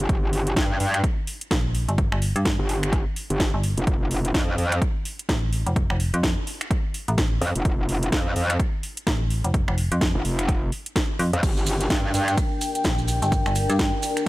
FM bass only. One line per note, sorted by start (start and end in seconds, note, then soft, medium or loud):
1.51 1.86 A#1 medium
1.89 2.10 G1 loud
2.12 2.34 G1 loud
2.36 2.57 G2 loud
3.54 3.75 G1 loud
5.29 5.64 A1 loud
5.67 5.88 F1 loud
5.90 6.12 F1 loud
6.14 6.35 F2 loud
7.08 7.40 A1 loud
9.07 9.42 A1 loud
9.44 9.66 F1 loud
9.68 9.89 F1 loud
9.92 10.13 F2 loud
11.19 11.31 F2 loud
12.85 13.20 A#1 loud
13.22 13.44 G1 loud
13.46 13.67 G1 loud
13.70 13.91 G2 loud